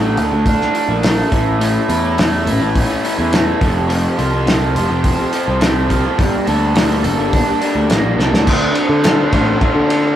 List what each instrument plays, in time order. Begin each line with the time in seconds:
Already playing: picked electric bass A1, clean electric guitar D3 E3, overdriven electric guitar D3 A3 A4
0.01 clean electric guitar A3 F4 A4
0.17 picked electric bass D2, open hi-hat
0.30 picked electric bass D2, clean electric guitar A3 F4 A4
0.46 overdriven electric guitar D4, kick, open hi-hat
0.59 clean electric guitar A3 F4 A4, snare
0.72 clean electric guitar E3 A3 F4 A4, open hi-hat
0.87 picked electric bass A#1, clean electric guitar A3 F4 A4
1.02 clean electric guitar D3 E3 A3 F4 A4, overdriven electric guitar A3, snare, open hi-hat
1.31 picked electric bass A1, overdriven electric guitar A2, clean electric guitar A3 C#4 E4 A4, kick, open hi-hat
1.45 clean electric guitar C#4 E4 A4
1.59 overdriven electric guitar A2, clean electric guitar A3 C#4 E4 A4, open hi-hat
1.88 picked electric bass E2, clean electric guitar A3 C#4 E4 A4, overdriven electric guitar E4, open hi-hat
2.02 clean electric guitar C#4 E4 A4
2.17 clean electric guitar A3 C#4 E4 A4, overdriven electric guitar A3, snare, open hi-hat
2.31 clean electric guitar C#4 E4 A4
2.46 picked electric bass A1, overdriven electric guitar E4, open hi-hat
2.59 picked electric bass A1, clean electric guitar C#4 E4 A4
2.75 overdriven electric guitar C#4, kick, open hi-hat
2.87 clean electric guitar C#4 E4 A4
3.02 overdriven electric guitar E3, clean electric guitar A3 C#4 E4 A4, open hi-hat
3.17 picked electric bass E2, clean electric guitar C#4 E4 A4
3.32 overdriven electric guitar A3, clean electric guitar A3 C#4 E4 A4, snare, open hi-hat
3.59 picked electric bass F1, overdriven electric guitar F2, clean electric guitar F3 C4 F4 A4, kick, open hi-hat
3.74 clean electric guitar C4 F4 A4
3.88 overdriven electric guitar F2, clean electric guitar F3 C4 F4 A4, open hi-hat
4.16 picked electric bass C2, clean electric guitar F3 C4 F4 A4, overdriven electric guitar F4, open hi-hat
4.31 clean electric guitar C4 F4 A4
4.45 clean electric guitar F3 C4 F4 A4, overdriven electric guitar A3, snare, open hi-hat
4.60 clean electric guitar C4 F4 A4
4.74 picked electric bass F1, overdriven electric guitar F4, open hi-hat
4.88 picked electric bass F1, clean electric guitar C4 F4 A4
5.03 overdriven electric guitar C4, kick, open hi-hat
5.17 clean electric guitar C4 F4 A4
5.31 clean electric guitar F3 C4 F4 A4, overdriven electric guitar F3, open hi-hat
5.46 picked electric bass C2, clean electric guitar C4 F4 A4
5.60 clean electric guitar F3 C4 F4 A4, overdriven electric guitar A3, snare, open hi-hat
5.89 clean electric guitar F3 C4 F4 A4, overdriven electric guitar F4, kick, open hi-hat
6.03 clean electric guitar C4 F4 A4
6.17 picked electric bass G1, overdriven electric guitar G2, clean electric guitar G3 A#3 D4 A4, kick, open hi-hat
6.46 picked electric bass D2, clean electric guitar G3 A#3 D4 A4, overdriven electric guitar A4, open hi-hat
6.60 clean electric guitar A#3 D4 A4
6.75 clean electric guitar G3 A#3 D4 A4, overdriven electric guitar A#3, snare, open hi-hat
6.89 clean electric guitar A#3 D4 A4
7.04 picked electric bass G1, overdriven electric guitar A4, open hi-hat
7.17 picked electric bass G1, clean electric guitar A#3 D4 A4
7.32 overdriven electric guitar D4, kick, open hi-hat
7.46 clean electric guitar A#3 D4 A4
7.61 clean electric guitar G3 A#3 D4 A4, overdriven electric guitar G3, open hi-hat
7.75 picked electric bass D2, clean electric guitar A#3 D4 A4
7.89 picked electric bass A1, clean electric guitar G3 A#3 D4 A4, overdriven electric guitar A#3, snare, open hi-hat
8.04 picked electric bass A#1
8.18 picked electric bass C2, clean electric guitar G3 A#3 D4 A4, overdriven electric guitar A4, snare
8.32 picked electric bass D2, clean electric guitar A#3 D4 A4, snare
8.46 picked electric bass D2, clean electric guitar D3 F3 C4 D4 A4, overdriven electric guitar D3 A3 D4 F4, kick, crash
8.75 ride
8.89 picked electric bass D3
9.04 clean electric guitar D3 F3 C4 D4 A4, overdriven electric guitar D3 A3 D4 F4, snare, clap, ride
9.31 picked electric bass A1, clean electric guitar D3 F3 C4 D4 A4, overdriven electric guitar D3 A3 D4 F4, kick, ride
9.60 clean electric guitar D3 F3 C4 D4 A4, overdriven electric guitar D3 A3 D4 F4, kick, ride
9.75 picked electric bass D3
9.90 ride